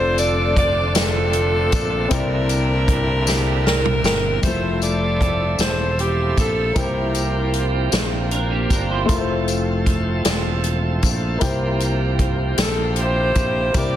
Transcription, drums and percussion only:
0.18 closed hi-hat, tambourine
0.57 kick, closed hi-hat
0.95 snare, closed hi-hat, tambourine
1.33 closed hi-hat
1.72 kick, closed hi-hat, tambourine
2.11 kick, closed hi-hat, tambourine
2.49 closed hi-hat, tambourine
2.88 kick, closed hi-hat
3.27 snare, tambourine
3.67 snare
3.86 mid tom
4.04 snare, tambourine
4.43 kick, closed hi-hat, tambourine
4.82 closed hi-hat, tambourine
5.21 kick, closed hi-hat
5.59 snare, closed hi-hat, tambourine
5.99 closed hi-hat
6.37 kick, closed hi-hat, tambourine
6.76 kick, closed hi-hat, tambourine
7.14 closed hi-hat, tambourine
7.54 closed hi-hat
7.92 snare, closed hi-hat, tambourine
8.31 closed hi-hat
8.70 kick, closed hi-hat, tambourine
9.09 kick, closed hi-hat, tambourine
9.48 closed hi-hat, tambourine
9.86 kick, closed hi-hat
10.25 snare, closed hi-hat, tambourine
10.64 closed hi-hat
11.03 kick, closed hi-hat, tambourine
11.41 kick, closed hi-hat, tambourine
11.80 closed hi-hat, tambourine
12.19 kick, closed hi-hat
12.58 snare, closed hi-hat, tambourine
12.96 closed hi-hat
13.35 kick, closed hi-hat, tambourine
13.74 kick, closed hi-hat, tambourine

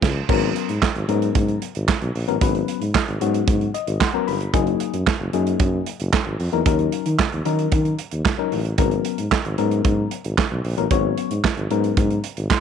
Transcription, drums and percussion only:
0.02 kick, snare, crash
0.29 kick, crash
0.56 closed hi-hat
0.69 closed hi-hat
0.82 kick, snare, clap
0.96 closed hi-hat
1.09 closed hi-hat
1.22 closed hi-hat
1.35 kick, closed hi-hat
1.48 closed hi-hat
1.62 closed hi-hat
1.75 closed hi-hat
1.88 kick, snare, clap
2.02 closed hi-hat
2.15 open hi-hat
2.28 closed hi-hat
2.41 kick, closed hi-hat
2.55 closed hi-hat
2.68 closed hi-hat
2.82 closed hi-hat
2.95 kick, snare, clap
3.08 closed hi-hat
3.21 closed hi-hat
3.34 closed hi-hat
3.48 kick, closed hi-hat
3.61 closed hi-hat
3.74 closed hi-hat
3.87 closed hi-hat
4.01 kick, snare, clap
4.28 open hi-hat
4.41 closed hi-hat
4.54 kick, closed hi-hat
4.67 closed hi-hat
4.80 closed hi-hat
4.94 closed hi-hat
5.07 kick, snare, clap
5.33 closed hi-hat
5.47 closed hi-hat
5.60 kick, closed hi-hat
5.86 closed hi-hat
6.00 closed hi-hat
6.13 kick, snare, clap
6.40 open hi-hat
6.53 closed hi-hat
6.66 kick, closed hi-hat
6.79 closed hi-hat
6.92 closed hi-hat
7.06 closed hi-hat
7.19 kick, snare, clap
7.32 closed hi-hat
7.45 closed hi-hat
7.59 closed hi-hat
7.72 kick, closed hi-hat
7.85 closed hi-hat
7.99 closed hi-hat
8.11 closed hi-hat
8.25 kick, snare, clap
8.52 open hi-hat
8.65 closed hi-hat
8.78 kick, closed hi-hat
8.91 closed hi-hat
9.05 closed hi-hat
9.18 closed hi-hat
9.32 kick, snare, clap
9.45 closed hi-hat
9.58 closed hi-hat
9.71 closed hi-hat
9.85 kick, closed hi-hat
10.11 closed hi-hat
10.24 closed hi-hat
10.38 kick, snare, clap
10.65 open hi-hat
10.78 closed hi-hat
10.91 kick, closed hi-hat
11.18 closed hi-hat
11.31 closed hi-hat
11.44 kick, snare, clap
11.57 closed hi-hat
11.71 closed hi-hat
11.84 closed hi-hat
11.97 kick, closed hi-hat
12.11 closed hi-hat
12.24 closed hi-hat
12.37 closed hi-hat
12.50 kick, snare, clap

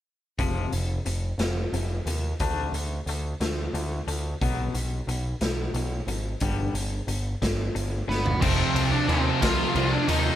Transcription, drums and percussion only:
0.39 kick, closed hi-hat
0.72 closed hi-hat
1.06 closed hi-hat
1.39 snare, closed hi-hat
1.74 closed hi-hat
2.07 closed hi-hat
2.40 kick, closed hi-hat
2.74 closed hi-hat
3.07 closed hi-hat
3.41 snare, closed hi-hat
3.75 closed hi-hat
4.08 closed hi-hat
4.41 kick, closed hi-hat
4.75 closed hi-hat
5.09 closed hi-hat
5.41 snare, closed hi-hat
5.74 closed hi-hat
6.08 closed hi-hat
6.40 kick, closed hi-hat
6.75 closed hi-hat
7.08 closed hi-hat
7.42 kick, snare, closed hi-hat
7.76 closed hi-hat
8.10 snare
8.26 floor tom
8.42 kick, crash
8.76 ride
9.09 ride
9.42 kick, snare, ride
9.75 ride
10.08 ride

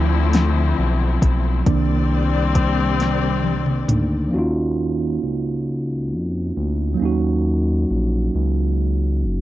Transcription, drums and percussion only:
0.33 snare, closed hi-hat
1.22 kick, closed hi-hat
1.66 kick, closed hi-hat
2.55 kick, closed hi-hat
3.00 snare, closed hi-hat
3.44 high tom
3.66 mid tom
3.88 closed hi-hat, mid tom

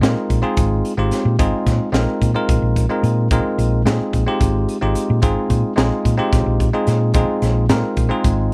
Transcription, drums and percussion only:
0.03 snare, closed hi-hat
0.30 kick, closed hi-hat
0.57 kick, closed hi-hat
0.85 closed hi-hat
1.11 snare, closed hi-hat
1.39 kick, closed hi-hat
1.66 kick, snare, closed hi-hat
1.94 snare, closed hi-hat
2.22 kick, closed hi-hat
2.49 kick, closed hi-hat
2.76 kick, closed hi-hat
3.04 closed hi-hat
3.31 kick, closed hi-hat
3.59 closed hi-hat
3.86 snare, closed hi-hat
4.13 kick, closed hi-hat
4.41 kick, closed hi-hat
4.69 closed hi-hat
4.95 closed hi-hat
5.22 kick, closed hi-hat
5.50 kick, closed hi-hat
5.78 snare, closed hi-hat
6.05 kick, closed hi-hat
6.33 kick, snare, closed hi-hat
6.60 kick, closed hi-hat
6.87 snare, closed hi-hat
7.14 kick, closed hi-hat
7.42 snare, closed hi-hat
7.69 snare, closed hi-hat
7.97 kick, closed hi-hat
8.24 kick, closed hi-hat

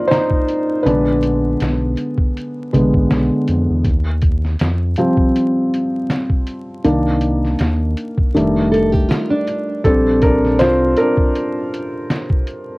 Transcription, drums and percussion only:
0.12 snare, closed hi-hat
0.31 kick
0.48 closed hi-hat
0.86 closed hi-hat
1.23 closed hi-hat
1.60 snare, closed hi-hat
1.97 closed hi-hat
2.18 kick
2.37 closed hi-hat
2.74 closed hi-hat
2.94 kick
3.11 snare, closed hi-hat
3.48 closed hi-hat
3.85 kick, closed hi-hat
4.22 kick, closed hi-hat
4.45 snare
4.59 snare, closed hi-hat
4.96 closed hi-hat
5.17 kick
5.36 closed hi-hat
5.74 closed hi-hat
6.10 snare, closed hi-hat
6.30 kick
6.47 closed hi-hat
6.84 closed hi-hat
7.21 closed hi-hat
7.45 snare
7.59 snare, closed hi-hat
7.97 closed hi-hat
8.17 kick
8.36 closed hi-hat
8.74 closed hi-hat
8.94 kick
9.11 snare, closed hi-hat
9.48 closed hi-hat
9.84 kick, closed hi-hat
10.22 kick, closed hi-hat
10.45 snare
10.59 snare, closed hi-hat
10.97 closed hi-hat
11.17 kick
11.35 closed hi-hat
11.74 closed hi-hat
12.10 snare, closed hi-hat
12.30 kick
12.47 closed hi-hat

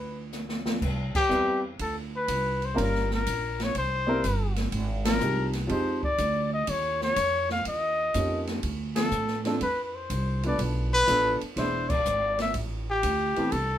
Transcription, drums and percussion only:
0.33 snare, hi-hat pedal
0.49 snare
0.66 snare
0.82 kick, crash
1.15 kick, crash
1.31 hi-hat pedal
1.79 kick, ride
2.28 kick, hi-hat pedal, ride
2.62 ride
2.77 kick, ride
2.95 snare
3.11 snare
3.26 kick, hi-hat pedal, ride
3.60 snare, ride
3.75 kick, ride
4.24 kick, hi-hat pedal, ride
4.56 snare, ride
4.72 kick, ride
5.05 snare, ride
5.21 hi-hat pedal
5.53 snare, ride
5.69 kick, ride
6.03 kick
6.18 kick, hi-hat pedal, ride
6.67 kick, ride
7.01 snare
7.16 kick, hi-hat pedal, ride
7.49 snare
7.65 kick, ride
8.14 kick, hi-hat pedal, ride
8.47 snare, ride
8.63 kick, ride
8.96 snare, ride
9.11 hi-hat pedal
9.28 snare
9.44 snare, ride
9.61 kick, ride
10.10 kick, hi-hat pedal, ride
10.43 ride
10.59 kick, ride
11.08 kick, hi-hat pedal, ride
11.41 ride
11.57 kick, snare, ride
11.90 kick, crash
12.06 hi-hat pedal
12.39 snare, ride
12.54 kick, ride
13.03 kick, hi-hat pedal, ride
13.36 ride
13.52 kick, ride

